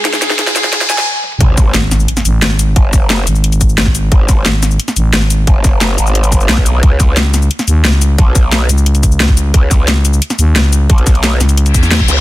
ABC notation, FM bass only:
X:1
M:4/4
L:1/8
Q:1/4=177
K:G#phr
V:1 name="FM bass" clef=bass
z8 | z2 G,,,2 z A,,, G,,,2 | z3 G,,,3 G,,,2 | z2 G,,,2 z A,,, G,,,2 |
z8 | z2 C,,2 z D,, C,,2 | z3 C,,3 C,,2 | z2 C,,2 z D,, C,,2 |
z3 C,,2 E,,2 z |]